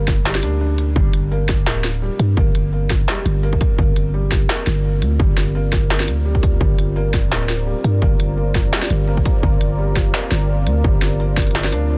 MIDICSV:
0, 0, Header, 1, 5, 480
1, 0, Start_track
1, 0, Key_signature, -2, "minor"
1, 0, Tempo, 352941
1, 1307, Time_signature, 4, 2, 24, 8
1, 16291, End_track
2, 0, Start_track
2, 0, Title_t, "Analog synth pad"
2, 0, Program_c, 0, 89
2, 1306, Note_on_c, 0, 60, 86
2, 1560, Note_on_c, 0, 65, 74
2, 2306, Note_on_c, 0, 70, 74
2, 2489, Note_on_c, 0, 74, 88
2, 16291, Note_off_c, 0, 60, 0
2, 16291, Note_off_c, 0, 65, 0
2, 16291, Note_off_c, 0, 70, 0
2, 16291, Note_off_c, 0, 74, 0
2, 16291, End_track
3, 0, Start_track
3, 0, Title_t, "Felt piano"
3, 0, Program_c, 1, 0
3, 0, Control_c, 1, 64, 127
3, 0, Note_on_c, 1, 55, 86
3, 0, Note_on_c, 1, 58, 103
3, 324, Note_off_c, 1, 58, 0
3, 347, Note_off_c, 1, 55, 0
3, 347, Note_on_c, 1, 55, 99
3, 565, Note_off_c, 1, 55, 0
3, 587, Note_on_c, 1, 62, 103
3, 732, Note_off_c, 1, 62, 0
3, 827, Note_on_c, 1, 62, 77
3, 1056, Note_off_c, 1, 62, 0
3, 1304, Note_on_c, 1, 55, 86
3, 1534, Note_off_c, 1, 55, 0
3, 1787, Note_on_c, 1, 58, 102
3, 2245, Note_off_c, 1, 58, 0
3, 2268, Note_on_c, 1, 58, 87
3, 2725, Note_off_c, 1, 58, 0
3, 2748, Note_on_c, 1, 55, 77
3, 2976, Note_off_c, 1, 55, 0
3, 3227, Note_on_c, 1, 58, 105
3, 3685, Note_off_c, 1, 58, 0
3, 3705, Note_on_c, 1, 58, 79
3, 4164, Note_off_c, 1, 58, 0
3, 4187, Note_on_c, 1, 55, 88
3, 4416, Note_off_c, 1, 55, 0
3, 4667, Note_on_c, 1, 58, 107
3, 5124, Note_off_c, 1, 58, 0
3, 5149, Note_on_c, 1, 58, 86
3, 5606, Note_off_c, 1, 58, 0
3, 5628, Note_on_c, 1, 55, 80
3, 5856, Note_off_c, 1, 55, 0
3, 6107, Note_on_c, 1, 58, 107
3, 6565, Note_off_c, 1, 58, 0
3, 6591, Note_on_c, 1, 58, 79
3, 7047, Note_off_c, 1, 58, 0
3, 7067, Note_on_c, 1, 55, 85
3, 7296, Note_off_c, 1, 55, 0
3, 7547, Note_on_c, 1, 58, 102
3, 8005, Note_off_c, 1, 58, 0
3, 8028, Note_on_c, 1, 58, 85
3, 8485, Note_off_c, 1, 58, 0
3, 8504, Note_on_c, 1, 55, 76
3, 8734, Note_off_c, 1, 55, 0
3, 8987, Note_on_c, 1, 55, 87
3, 9216, Note_off_c, 1, 55, 0
3, 9464, Note_on_c, 1, 58, 106
3, 9923, Note_off_c, 1, 58, 0
3, 9945, Note_on_c, 1, 58, 85
3, 10404, Note_off_c, 1, 58, 0
3, 10426, Note_on_c, 1, 55, 77
3, 10655, Note_off_c, 1, 55, 0
3, 10904, Note_on_c, 1, 58, 107
3, 11363, Note_off_c, 1, 58, 0
3, 11384, Note_on_c, 1, 58, 82
3, 11843, Note_off_c, 1, 58, 0
3, 11864, Note_on_c, 1, 55, 86
3, 12094, Note_off_c, 1, 55, 0
3, 12342, Note_on_c, 1, 58, 107
3, 12802, Note_off_c, 1, 58, 0
3, 12824, Note_on_c, 1, 58, 86
3, 13283, Note_off_c, 1, 58, 0
3, 13305, Note_on_c, 1, 55, 81
3, 13535, Note_off_c, 1, 55, 0
3, 13785, Note_on_c, 1, 58, 106
3, 14244, Note_off_c, 1, 58, 0
3, 14267, Note_on_c, 1, 58, 75
3, 14725, Note_off_c, 1, 58, 0
3, 14749, Note_on_c, 1, 55, 87
3, 14977, Note_off_c, 1, 55, 0
3, 15227, Note_on_c, 1, 58, 102
3, 15684, Note_off_c, 1, 58, 0
3, 15708, Note_on_c, 1, 58, 88
3, 15925, Note_off_c, 1, 58, 0
3, 15947, Note_on_c, 1, 62, 103
3, 16092, Note_off_c, 1, 62, 0
3, 16186, Note_on_c, 1, 62, 78
3, 16291, Note_off_c, 1, 62, 0
3, 16291, End_track
4, 0, Start_track
4, 0, Title_t, "808-style bass"
4, 0, Program_c, 2, 38
4, 0, Note_on_c, 2, 31, 100
4, 589, Note_on_c, 2, 38, 79
4, 609, Note_off_c, 2, 31, 0
4, 1293, Note_off_c, 2, 38, 0
4, 1304, Note_on_c, 2, 31, 99
4, 2263, Note_on_c, 2, 26, 100
4, 2283, Note_off_c, 2, 31, 0
4, 2858, Note_off_c, 2, 26, 0
4, 2985, Note_on_c, 2, 43, 86
4, 3208, Note_off_c, 2, 43, 0
4, 3225, Note_on_c, 2, 31, 95
4, 4172, Note_off_c, 2, 31, 0
4, 4425, Note_on_c, 2, 31, 93
4, 4892, Note_off_c, 2, 31, 0
4, 5146, Note_on_c, 2, 31, 98
4, 6092, Note_off_c, 2, 31, 0
4, 6350, Note_on_c, 2, 31, 91
4, 6829, Note_on_c, 2, 38, 98
4, 6849, Note_off_c, 2, 31, 0
4, 7050, Note_off_c, 2, 38, 0
4, 7067, Note_on_c, 2, 31, 97
4, 8266, Note_on_c, 2, 38, 78
4, 8286, Note_off_c, 2, 31, 0
4, 8972, Note_off_c, 2, 38, 0
4, 8985, Note_on_c, 2, 31, 97
4, 9946, Note_on_c, 2, 26, 105
4, 9966, Note_off_c, 2, 31, 0
4, 10539, Note_off_c, 2, 26, 0
4, 10668, Note_on_c, 2, 43, 90
4, 10889, Note_off_c, 2, 43, 0
4, 10906, Note_on_c, 2, 31, 97
4, 11852, Note_off_c, 2, 31, 0
4, 12108, Note_on_c, 2, 31, 90
4, 12573, Note_off_c, 2, 31, 0
4, 12826, Note_on_c, 2, 31, 99
4, 13772, Note_off_c, 2, 31, 0
4, 14026, Note_on_c, 2, 31, 86
4, 14505, Note_on_c, 2, 38, 101
4, 14525, Note_off_c, 2, 31, 0
4, 14728, Note_off_c, 2, 38, 0
4, 14747, Note_on_c, 2, 31, 101
4, 15951, Note_on_c, 2, 38, 82
4, 15971, Note_off_c, 2, 31, 0
4, 16291, Note_off_c, 2, 38, 0
4, 16291, End_track
5, 0, Start_track
5, 0, Title_t, "Drums"
5, 105, Note_on_c, 9, 36, 62
5, 106, Note_on_c, 9, 40, 56
5, 106, Note_on_c, 9, 42, 66
5, 241, Note_off_c, 9, 36, 0
5, 242, Note_off_c, 9, 40, 0
5, 242, Note_off_c, 9, 42, 0
5, 345, Note_on_c, 9, 38, 115
5, 345, Note_on_c, 9, 42, 37
5, 474, Note_on_c, 9, 40, 85
5, 481, Note_off_c, 9, 38, 0
5, 481, Note_off_c, 9, 42, 0
5, 584, Note_on_c, 9, 42, 80
5, 610, Note_off_c, 9, 40, 0
5, 720, Note_off_c, 9, 42, 0
5, 1064, Note_on_c, 9, 42, 68
5, 1200, Note_off_c, 9, 42, 0
5, 1305, Note_on_c, 9, 36, 124
5, 1441, Note_off_c, 9, 36, 0
5, 1543, Note_on_c, 9, 42, 84
5, 1679, Note_off_c, 9, 42, 0
5, 2023, Note_on_c, 9, 40, 56
5, 2023, Note_on_c, 9, 42, 70
5, 2024, Note_on_c, 9, 36, 65
5, 2159, Note_off_c, 9, 40, 0
5, 2159, Note_off_c, 9, 42, 0
5, 2160, Note_off_c, 9, 36, 0
5, 2264, Note_on_c, 9, 38, 118
5, 2264, Note_on_c, 9, 42, 39
5, 2400, Note_off_c, 9, 38, 0
5, 2400, Note_off_c, 9, 42, 0
5, 2504, Note_on_c, 9, 40, 57
5, 2504, Note_on_c, 9, 42, 85
5, 2640, Note_off_c, 9, 40, 0
5, 2640, Note_off_c, 9, 42, 0
5, 2986, Note_on_c, 9, 42, 71
5, 3122, Note_off_c, 9, 42, 0
5, 3225, Note_on_c, 9, 36, 127
5, 3361, Note_off_c, 9, 36, 0
5, 3467, Note_on_c, 9, 42, 85
5, 3603, Note_off_c, 9, 42, 0
5, 3946, Note_on_c, 9, 36, 65
5, 3948, Note_on_c, 9, 40, 53
5, 3948, Note_on_c, 9, 42, 70
5, 4082, Note_off_c, 9, 36, 0
5, 4084, Note_off_c, 9, 40, 0
5, 4084, Note_off_c, 9, 42, 0
5, 4189, Note_on_c, 9, 38, 124
5, 4189, Note_on_c, 9, 42, 39
5, 4325, Note_off_c, 9, 38, 0
5, 4325, Note_off_c, 9, 42, 0
5, 4430, Note_on_c, 9, 42, 87
5, 4566, Note_off_c, 9, 42, 0
5, 4796, Note_on_c, 9, 36, 66
5, 4907, Note_off_c, 9, 36, 0
5, 4907, Note_on_c, 9, 36, 111
5, 4908, Note_on_c, 9, 42, 70
5, 5043, Note_off_c, 9, 36, 0
5, 5044, Note_off_c, 9, 42, 0
5, 5147, Note_on_c, 9, 36, 127
5, 5283, Note_off_c, 9, 36, 0
5, 5389, Note_on_c, 9, 42, 86
5, 5525, Note_off_c, 9, 42, 0
5, 5868, Note_on_c, 9, 36, 68
5, 5869, Note_on_c, 9, 40, 52
5, 5869, Note_on_c, 9, 42, 66
5, 6004, Note_off_c, 9, 36, 0
5, 6005, Note_off_c, 9, 40, 0
5, 6005, Note_off_c, 9, 42, 0
5, 6109, Note_on_c, 9, 38, 127
5, 6109, Note_on_c, 9, 42, 38
5, 6245, Note_off_c, 9, 38, 0
5, 6245, Note_off_c, 9, 42, 0
5, 6349, Note_on_c, 9, 40, 53
5, 6349, Note_on_c, 9, 42, 84
5, 6485, Note_off_c, 9, 40, 0
5, 6485, Note_off_c, 9, 42, 0
5, 6828, Note_on_c, 9, 42, 69
5, 6964, Note_off_c, 9, 42, 0
5, 7067, Note_on_c, 9, 36, 127
5, 7203, Note_off_c, 9, 36, 0
5, 7309, Note_on_c, 9, 40, 59
5, 7309, Note_on_c, 9, 42, 81
5, 7445, Note_off_c, 9, 40, 0
5, 7445, Note_off_c, 9, 42, 0
5, 7786, Note_on_c, 9, 36, 64
5, 7787, Note_on_c, 9, 40, 49
5, 7787, Note_on_c, 9, 42, 67
5, 7922, Note_off_c, 9, 36, 0
5, 7923, Note_off_c, 9, 40, 0
5, 7923, Note_off_c, 9, 42, 0
5, 8029, Note_on_c, 9, 38, 122
5, 8029, Note_on_c, 9, 42, 36
5, 8160, Note_on_c, 9, 40, 76
5, 8165, Note_off_c, 9, 38, 0
5, 8165, Note_off_c, 9, 42, 0
5, 8270, Note_on_c, 9, 42, 81
5, 8296, Note_off_c, 9, 40, 0
5, 8406, Note_off_c, 9, 42, 0
5, 8635, Note_on_c, 9, 36, 63
5, 8745, Note_off_c, 9, 36, 0
5, 8745, Note_on_c, 9, 36, 108
5, 8749, Note_on_c, 9, 42, 69
5, 8881, Note_off_c, 9, 36, 0
5, 8885, Note_off_c, 9, 42, 0
5, 8986, Note_on_c, 9, 36, 127
5, 9122, Note_off_c, 9, 36, 0
5, 9228, Note_on_c, 9, 42, 78
5, 9364, Note_off_c, 9, 42, 0
5, 9706, Note_on_c, 9, 36, 62
5, 9708, Note_on_c, 9, 40, 50
5, 9708, Note_on_c, 9, 42, 63
5, 9842, Note_off_c, 9, 36, 0
5, 9844, Note_off_c, 9, 40, 0
5, 9844, Note_off_c, 9, 42, 0
5, 9949, Note_on_c, 9, 38, 118
5, 9949, Note_on_c, 9, 42, 35
5, 10085, Note_off_c, 9, 38, 0
5, 10085, Note_off_c, 9, 42, 0
5, 10189, Note_on_c, 9, 40, 54
5, 10189, Note_on_c, 9, 42, 76
5, 10325, Note_off_c, 9, 40, 0
5, 10325, Note_off_c, 9, 42, 0
5, 10668, Note_on_c, 9, 42, 61
5, 10804, Note_off_c, 9, 42, 0
5, 10907, Note_on_c, 9, 36, 121
5, 11043, Note_off_c, 9, 36, 0
5, 11149, Note_on_c, 9, 42, 80
5, 11285, Note_off_c, 9, 42, 0
5, 11627, Note_on_c, 9, 36, 60
5, 11631, Note_on_c, 9, 40, 53
5, 11631, Note_on_c, 9, 42, 64
5, 11763, Note_off_c, 9, 36, 0
5, 11767, Note_off_c, 9, 40, 0
5, 11767, Note_off_c, 9, 42, 0
5, 11870, Note_on_c, 9, 38, 116
5, 11870, Note_on_c, 9, 42, 36
5, 11999, Note_on_c, 9, 40, 80
5, 12006, Note_off_c, 9, 38, 0
5, 12006, Note_off_c, 9, 42, 0
5, 12107, Note_on_c, 9, 42, 79
5, 12135, Note_off_c, 9, 40, 0
5, 12243, Note_off_c, 9, 42, 0
5, 12476, Note_on_c, 9, 36, 59
5, 12587, Note_off_c, 9, 36, 0
5, 12587, Note_on_c, 9, 36, 103
5, 12589, Note_on_c, 9, 42, 64
5, 12723, Note_off_c, 9, 36, 0
5, 12725, Note_off_c, 9, 42, 0
5, 12827, Note_on_c, 9, 36, 116
5, 12963, Note_off_c, 9, 36, 0
5, 13068, Note_on_c, 9, 42, 80
5, 13204, Note_off_c, 9, 42, 0
5, 13546, Note_on_c, 9, 36, 60
5, 13550, Note_on_c, 9, 40, 53
5, 13550, Note_on_c, 9, 42, 64
5, 13682, Note_off_c, 9, 36, 0
5, 13686, Note_off_c, 9, 40, 0
5, 13686, Note_off_c, 9, 42, 0
5, 13788, Note_on_c, 9, 38, 111
5, 13788, Note_on_c, 9, 42, 38
5, 13924, Note_off_c, 9, 38, 0
5, 13924, Note_off_c, 9, 42, 0
5, 14027, Note_on_c, 9, 40, 56
5, 14027, Note_on_c, 9, 42, 82
5, 14163, Note_off_c, 9, 40, 0
5, 14163, Note_off_c, 9, 42, 0
5, 14506, Note_on_c, 9, 42, 63
5, 14642, Note_off_c, 9, 42, 0
5, 14747, Note_on_c, 9, 36, 118
5, 14883, Note_off_c, 9, 36, 0
5, 14988, Note_on_c, 9, 40, 67
5, 14988, Note_on_c, 9, 42, 86
5, 15124, Note_off_c, 9, 40, 0
5, 15124, Note_off_c, 9, 42, 0
5, 15467, Note_on_c, 9, 36, 60
5, 15467, Note_on_c, 9, 40, 58
5, 15467, Note_on_c, 9, 42, 66
5, 15531, Note_off_c, 9, 42, 0
5, 15531, Note_on_c, 9, 42, 55
5, 15598, Note_off_c, 9, 42, 0
5, 15598, Note_on_c, 9, 42, 47
5, 15603, Note_off_c, 9, 36, 0
5, 15603, Note_off_c, 9, 40, 0
5, 15652, Note_off_c, 9, 42, 0
5, 15652, Note_on_c, 9, 42, 38
5, 15707, Note_off_c, 9, 42, 0
5, 15707, Note_on_c, 9, 38, 117
5, 15707, Note_on_c, 9, 42, 38
5, 15834, Note_on_c, 9, 40, 88
5, 15843, Note_off_c, 9, 38, 0
5, 15843, Note_off_c, 9, 42, 0
5, 15946, Note_on_c, 9, 42, 85
5, 15970, Note_off_c, 9, 40, 0
5, 16082, Note_off_c, 9, 42, 0
5, 16291, End_track
0, 0, End_of_file